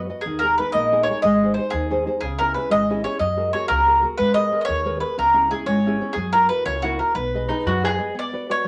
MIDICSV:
0, 0, Header, 1, 5, 480
1, 0, Start_track
1, 0, Key_signature, 5, "major"
1, 0, Tempo, 329128
1, 382, Time_signature, 6, 3, 24, 8
1, 12656, End_track
2, 0, Start_track
2, 0, Title_t, "Mandolin"
2, 0, Program_c, 0, 25
2, 309, Note_on_c, 0, 68, 67
2, 567, Note_on_c, 0, 70, 81
2, 613, Note_off_c, 0, 68, 0
2, 817, Note_off_c, 0, 70, 0
2, 843, Note_on_c, 0, 71, 78
2, 1049, Note_off_c, 0, 71, 0
2, 1054, Note_on_c, 0, 75, 107
2, 1501, Note_off_c, 0, 75, 0
2, 1507, Note_on_c, 0, 73, 84
2, 1760, Note_off_c, 0, 73, 0
2, 1783, Note_on_c, 0, 75, 87
2, 2241, Note_off_c, 0, 75, 0
2, 2247, Note_on_c, 0, 72, 72
2, 2485, Note_on_c, 0, 68, 90
2, 2514, Note_off_c, 0, 72, 0
2, 3012, Note_off_c, 0, 68, 0
2, 3217, Note_on_c, 0, 68, 78
2, 3470, Note_off_c, 0, 68, 0
2, 3479, Note_on_c, 0, 70, 88
2, 3703, Note_off_c, 0, 70, 0
2, 3709, Note_on_c, 0, 71, 80
2, 3934, Note_off_c, 0, 71, 0
2, 3958, Note_on_c, 0, 75, 101
2, 4413, Note_off_c, 0, 75, 0
2, 4434, Note_on_c, 0, 73, 85
2, 4652, Note_off_c, 0, 73, 0
2, 4658, Note_on_c, 0, 75, 80
2, 5143, Note_off_c, 0, 75, 0
2, 5149, Note_on_c, 0, 73, 94
2, 5363, Note_off_c, 0, 73, 0
2, 5368, Note_on_c, 0, 70, 97
2, 5896, Note_off_c, 0, 70, 0
2, 6089, Note_on_c, 0, 71, 99
2, 6326, Note_off_c, 0, 71, 0
2, 6331, Note_on_c, 0, 75, 101
2, 6698, Note_off_c, 0, 75, 0
2, 6724, Note_on_c, 0, 75, 69
2, 6773, Note_off_c, 0, 75, 0
2, 6779, Note_on_c, 0, 73, 113
2, 7291, Note_off_c, 0, 73, 0
2, 7297, Note_on_c, 0, 71, 71
2, 7533, Note_off_c, 0, 71, 0
2, 7564, Note_on_c, 0, 70, 84
2, 8022, Note_off_c, 0, 70, 0
2, 8033, Note_on_c, 0, 68, 70
2, 8260, Note_on_c, 0, 73, 94
2, 8285, Note_off_c, 0, 68, 0
2, 8939, Note_on_c, 0, 68, 75
2, 8941, Note_off_c, 0, 73, 0
2, 9209, Note_off_c, 0, 68, 0
2, 9225, Note_on_c, 0, 70, 90
2, 9457, Note_off_c, 0, 70, 0
2, 9463, Note_on_c, 0, 71, 87
2, 9692, Note_off_c, 0, 71, 0
2, 9706, Note_on_c, 0, 73, 110
2, 9950, Note_on_c, 0, 66, 81
2, 9955, Note_off_c, 0, 73, 0
2, 10181, Note_off_c, 0, 66, 0
2, 10196, Note_on_c, 0, 70, 59
2, 10420, Note_off_c, 0, 70, 0
2, 10426, Note_on_c, 0, 71, 74
2, 11594, Note_off_c, 0, 71, 0
2, 11942, Note_on_c, 0, 74, 90
2, 12407, Note_off_c, 0, 74, 0
2, 12413, Note_on_c, 0, 73, 100
2, 12639, Note_off_c, 0, 73, 0
2, 12656, End_track
3, 0, Start_track
3, 0, Title_t, "Nylon-string guitar"
3, 0, Program_c, 1, 24
3, 132, Note_on_c, 1, 66, 40
3, 140, Note_on_c, 1, 71, 44
3, 145, Note_on_c, 1, 75, 52
3, 325, Note_off_c, 1, 66, 0
3, 330, Note_off_c, 1, 71, 0
3, 332, Note_off_c, 1, 75, 0
3, 382, Note_on_c, 1, 51, 65
3, 614, Note_on_c, 1, 63, 45
3, 634, Note_on_c, 1, 68, 45
3, 637, Note_on_c, 1, 70, 58
3, 848, Note_off_c, 1, 68, 0
3, 852, Note_off_c, 1, 63, 0
3, 857, Note_off_c, 1, 70, 0
3, 858, Note_off_c, 1, 51, 0
3, 868, Note_on_c, 1, 63, 40
3, 868, Note_on_c, 1, 68, 48
3, 875, Note_on_c, 1, 70, 55
3, 1085, Note_on_c, 1, 58, 67
3, 1258, Note_off_c, 1, 68, 0
3, 1261, Note_off_c, 1, 63, 0
3, 1264, Note_off_c, 1, 70, 0
3, 1341, Note_on_c, 1, 63, 70
3, 1351, Note_on_c, 1, 68, 53
3, 1357, Note_on_c, 1, 70, 65
3, 1566, Note_off_c, 1, 58, 0
3, 1581, Note_off_c, 1, 68, 0
3, 1588, Note_off_c, 1, 63, 0
3, 1599, Note_on_c, 1, 68, 46
3, 1603, Note_off_c, 1, 70, 0
3, 1606, Note_on_c, 1, 63, 53
3, 1620, Note_on_c, 1, 70, 49
3, 1779, Note_off_c, 1, 68, 0
3, 1784, Note_off_c, 1, 63, 0
3, 1792, Note_off_c, 1, 70, 0
3, 1814, Note_on_c, 1, 56, 70
3, 2087, Note_on_c, 1, 63, 42
3, 2096, Note_on_c, 1, 68, 41
3, 2106, Note_on_c, 1, 72, 43
3, 2288, Note_off_c, 1, 56, 0
3, 2288, Note_off_c, 1, 63, 0
3, 2288, Note_off_c, 1, 68, 0
3, 2301, Note_off_c, 1, 72, 0
3, 2304, Note_on_c, 1, 63, 53
3, 2308, Note_on_c, 1, 68, 50
3, 2319, Note_on_c, 1, 72, 55
3, 2544, Note_on_c, 1, 51, 59
3, 2693, Note_off_c, 1, 63, 0
3, 2693, Note_off_c, 1, 68, 0
3, 2702, Note_off_c, 1, 72, 0
3, 2777, Note_on_c, 1, 63, 65
3, 2787, Note_on_c, 1, 68, 63
3, 2792, Note_on_c, 1, 72, 73
3, 2986, Note_off_c, 1, 63, 0
3, 3001, Note_off_c, 1, 72, 0
3, 3004, Note_on_c, 1, 63, 54
3, 3009, Note_off_c, 1, 68, 0
3, 3010, Note_off_c, 1, 51, 0
3, 3019, Note_on_c, 1, 72, 49
3, 3026, Note_on_c, 1, 68, 46
3, 3194, Note_off_c, 1, 63, 0
3, 3203, Note_off_c, 1, 72, 0
3, 3207, Note_off_c, 1, 68, 0
3, 3263, Note_on_c, 1, 49, 72
3, 3512, Note_on_c, 1, 61, 49
3, 3521, Note_on_c, 1, 68, 61
3, 3524, Note_on_c, 1, 64, 41
3, 3722, Note_off_c, 1, 61, 0
3, 3727, Note_off_c, 1, 49, 0
3, 3734, Note_off_c, 1, 64, 0
3, 3735, Note_off_c, 1, 68, 0
3, 3740, Note_on_c, 1, 61, 49
3, 3750, Note_on_c, 1, 68, 56
3, 3754, Note_on_c, 1, 64, 48
3, 3938, Note_on_c, 1, 56, 49
3, 4126, Note_off_c, 1, 61, 0
3, 4132, Note_off_c, 1, 64, 0
3, 4133, Note_off_c, 1, 68, 0
3, 4228, Note_on_c, 1, 61, 64
3, 4231, Note_on_c, 1, 64, 64
3, 4241, Note_on_c, 1, 68, 75
3, 4413, Note_off_c, 1, 61, 0
3, 4421, Note_off_c, 1, 68, 0
3, 4422, Note_off_c, 1, 56, 0
3, 4422, Note_off_c, 1, 64, 0
3, 4431, Note_on_c, 1, 61, 43
3, 4438, Note_on_c, 1, 68, 58
3, 4442, Note_on_c, 1, 64, 36
3, 4624, Note_off_c, 1, 61, 0
3, 4629, Note_off_c, 1, 64, 0
3, 4629, Note_off_c, 1, 68, 0
3, 4654, Note_on_c, 1, 54, 59
3, 4909, Note_on_c, 1, 68, 47
3, 4915, Note_on_c, 1, 66, 39
3, 4923, Note_on_c, 1, 70, 52
3, 5144, Note_off_c, 1, 54, 0
3, 5147, Note_off_c, 1, 68, 0
3, 5152, Note_off_c, 1, 66, 0
3, 5161, Note_off_c, 1, 70, 0
3, 5168, Note_on_c, 1, 68, 50
3, 5169, Note_on_c, 1, 66, 52
3, 5178, Note_on_c, 1, 70, 49
3, 5409, Note_on_c, 1, 49, 48
3, 5561, Note_off_c, 1, 68, 0
3, 5564, Note_off_c, 1, 66, 0
3, 5569, Note_off_c, 1, 70, 0
3, 5637, Note_on_c, 1, 66, 60
3, 5647, Note_on_c, 1, 68, 57
3, 5657, Note_on_c, 1, 70, 64
3, 5849, Note_off_c, 1, 66, 0
3, 5861, Note_off_c, 1, 68, 0
3, 5866, Note_on_c, 1, 66, 49
3, 5871, Note_off_c, 1, 70, 0
3, 5878, Note_on_c, 1, 68, 36
3, 5883, Note_off_c, 1, 49, 0
3, 5888, Note_on_c, 1, 70, 58
3, 6064, Note_off_c, 1, 66, 0
3, 6071, Note_off_c, 1, 68, 0
3, 6077, Note_off_c, 1, 70, 0
3, 6105, Note_on_c, 1, 56, 56
3, 6350, Note_on_c, 1, 68, 50
3, 6360, Note_on_c, 1, 71, 50
3, 6366, Note_on_c, 1, 70, 47
3, 6575, Note_off_c, 1, 68, 0
3, 6581, Note_off_c, 1, 70, 0
3, 6592, Note_off_c, 1, 56, 0
3, 6592, Note_on_c, 1, 68, 49
3, 6599, Note_off_c, 1, 71, 0
3, 6599, Note_on_c, 1, 70, 52
3, 6617, Note_on_c, 1, 71, 46
3, 6842, Note_on_c, 1, 51, 61
3, 6995, Note_off_c, 1, 68, 0
3, 6999, Note_off_c, 1, 70, 0
3, 7010, Note_off_c, 1, 71, 0
3, 7079, Note_on_c, 1, 68, 62
3, 7087, Note_on_c, 1, 71, 69
3, 7088, Note_on_c, 1, 70, 62
3, 7279, Note_off_c, 1, 68, 0
3, 7286, Note_off_c, 1, 70, 0
3, 7288, Note_off_c, 1, 71, 0
3, 7296, Note_on_c, 1, 68, 48
3, 7302, Note_on_c, 1, 70, 45
3, 7308, Note_on_c, 1, 71, 50
3, 7321, Note_off_c, 1, 51, 0
3, 7500, Note_off_c, 1, 68, 0
3, 7503, Note_off_c, 1, 70, 0
3, 7505, Note_off_c, 1, 71, 0
3, 7553, Note_on_c, 1, 49, 66
3, 7786, Note_on_c, 1, 61, 53
3, 7792, Note_on_c, 1, 64, 45
3, 7801, Note_on_c, 1, 68, 55
3, 8028, Note_off_c, 1, 61, 0
3, 8032, Note_off_c, 1, 64, 0
3, 8036, Note_off_c, 1, 49, 0
3, 8039, Note_off_c, 1, 68, 0
3, 8042, Note_on_c, 1, 61, 51
3, 8055, Note_on_c, 1, 64, 46
3, 8056, Note_on_c, 1, 68, 60
3, 8276, Note_on_c, 1, 56, 62
3, 8441, Note_off_c, 1, 61, 0
3, 8444, Note_off_c, 1, 64, 0
3, 8447, Note_off_c, 1, 68, 0
3, 8550, Note_on_c, 1, 61, 60
3, 8561, Note_on_c, 1, 64, 64
3, 8569, Note_on_c, 1, 68, 63
3, 8745, Note_off_c, 1, 61, 0
3, 8755, Note_off_c, 1, 56, 0
3, 8756, Note_off_c, 1, 64, 0
3, 8762, Note_on_c, 1, 61, 47
3, 8772, Note_off_c, 1, 68, 0
3, 8773, Note_on_c, 1, 64, 42
3, 8789, Note_on_c, 1, 68, 55
3, 8952, Note_off_c, 1, 61, 0
3, 8959, Note_off_c, 1, 64, 0
3, 8968, Note_off_c, 1, 68, 0
3, 8996, Note_on_c, 1, 54, 57
3, 9247, Note_on_c, 1, 64, 40
3, 9257, Note_on_c, 1, 66, 48
3, 9271, Note_on_c, 1, 70, 52
3, 9467, Note_off_c, 1, 64, 0
3, 9471, Note_off_c, 1, 66, 0
3, 9473, Note_off_c, 1, 54, 0
3, 9484, Note_off_c, 1, 70, 0
3, 9485, Note_on_c, 1, 64, 52
3, 9488, Note_on_c, 1, 66, 53
3, 9502, Note_on_c, 1, 70, 57
3, 9696, Note_on_c, 1, 49, 56
3, 9879, Note_off_c, 1, 64, 0
3, 9882, Note_off_c, 1, 66, 0
3, 9890, Note_off_c, 1, 70, 0
3, 9972, Note_on_c, 1, 64, 65
3, 9977, Note_on_c, 1, 66, 59
3, 9988, Note_on_c, 1, 70, 71
3, 10185, Note_off_c, 1, 49, 0
3, 10191, Note_off_c, 1, 64, 0
3, 10194, Note_off_c, 1, 66, 0
3, 10203, Note_off_c, 1, 70, 0
3, 10209, Note_on_c, 1, 66, 40
3, 10212, Note_on_c, 1, 64, 42
3, 10221, Note_on_c, 1, 70, 49
3, 10396, Note_off_c, 1, 64, 0
3, 10399, Note_off_c, 1, 66, 0
3, 10404, Note_off_c, 1, 70, 0
3, 10417, Note_on_c, 1, 59, 61
3, 10708, Note_off_c, 1, 59, 0
3, 10712, Note_on_c, 1, 68, 49
3, 10714, Note_on_c, 1, 71, 46
3, 10727, Note_on_c, 1, 75, 59
3, 10906, Note_off_c, 1, 68, 0
3, 10919, Note_off_c, 1, 71, 0
3, 10919, Note_off_c, 1, 75, 0
3, 10924, Note_on_c, 1, 68, 52
3, 10936, Note_on_c, 1, 71, 45
3, 10939, Note_on_c, 1, 75, 59
3, 11186, Note_on_c, 1, 54, 63
3, 11323, Note_off_c, 1, 68, 0
3, 11331, Note_off_c, 1, 71, 0
3, 11331, Note_off_c, 1, 75, 0
3, 11420, Note_on_c, 1, 68, 65
3, 11431, Note_on_c, 1, 71, 51
3, 11435, Note_on_c, 1, 75, 70
3, 11624, Note_off_c, 1, 71, 0
3, 11631, Note_off_c, 1, 68, 0
3, 11640, Note_off_c, 1, 75, 0
3, 11641, Note_on_c, 1, 71, 45
3, 11648, Note_on_c, 1, 68, 41
3, 11656, Note_off_c, 1, 54, 0
3, 11658, Note_on_c, 1, 75, 53
3, 11836, Note_off_c, 1, 71, 0
3, 11840, Note_off_c, 1, 68, 0
3, 11846, Note_off_c, 1, 75, 0
3, 11880, Note_on_c, 1, 59, 61
3, 12151, Note_on_c, 1, 66, 41
3, 12152, Note_off_c, 1, 59, 0
3, 12158, Note_on_c, 1, 71, 51
3, 12168, Note_on_c, 1, 74, 45
3, 12370, Note_off_c, 1, 71, 0
3, 12376, Note_off_c, 1, 66, 0
3, 12382, Note_off_c, 1, 74, 0
3, 12390, Note_on_c, 1, 71, 44
3, 12393, Note_on_c, 1, 66, 51
3, 12400, Note_on_c, 1, 74, 56
3, 12607, Note_on_c, 1, 54, 57
3, 12656, Note_off_c, 1, 54, 0
3, 12656, Note_off_c, 1, 66, 0
3, 12656, Note_off_c, 1, 71, 0
3, 12656, Note_off_c, 1, 74, 0
3, 12656, End_track
4, 0, Start_track
4, 0, Title_t, "Mandolin"
4, 0, Program_c, 2, 25
4, 10917, Note_on_c, 2, 63, 57
4, 11168, Note_off_c, 2, 63, 0
4, 11182, Note_on_c, 2, 66, 80
4, 11439, Note_off_c, 2, 66, 0
4, 11444, Note_on_c, 2, 68, 116
4, 11871, Note_off_c, 2, 68, 0
4, 12656, End_track
5, 0, Start_track
5, 0, Title_t, "Upright bass"
5, 0, Program_c, 3, 32
5, 377, Note_on_c, 3, 39, 80
5, 847, Note_off_c, 3, 39, 0
5, 1094, Note_on_c, 3, 34, 90
5, 1563, Note_off_c, 3, 34, 0
5, 1804, Note_on_c, 3, 32, 104
5, 2274, Note_off_c, 3, 32, 0
5, 2524, Note_on_c, 3, 39, 95
5, 2992, Note_off_c, 3, 39, 0
5, 3234, Note_on_c, 3, 37, 77
5, 3703, Note_off_c, 3, 37, 0
5, 3968, Note_on_c, 3, 32, 95
5, 4433, Note_off_c, 3, 32, 0
5, 4666, Note_on_c, 3, 42, 86
5, 5141, Note_off_c, 3, 42, 0
5, 5393, Note_on_c, 3, 37, 94
5, 5867, Note_off_c, 3, 37, 0
5, 6129, Note_on_c, 3, 44, 76
5, 6599, Note_off_c, 3, 44, 0
5, 6835, Note_on_c, 3, 39, 98
5, 7309, Note_off_c, 3, 39, 0
5, 7550, Note_on_c, 3, 37, 79
5, 8025, Note_off_c, 3, 37, 0
5, 8257, Note_on_c, 3, 32, 92
5, 8733, Note_off_c, 3, 32, 0
5, 8983, Note_on_c, 3, 42, 93
5, 9457, Note_off_c, 3, 42, 0
5, 9711, Note_on_c, 3, 37, 107
5, 10184, Note_off_c, 3, 37, 0
5, 10441, Note_on_c, 3, 35, 108
5, 10914, Note_off_c, 3, 35, 0
5, 11168, Note_on_c, 3, 42, 87
5, 11640, Note_off_c, 3, 42, 0
5, 12656, End_track
0, 0, End_of_file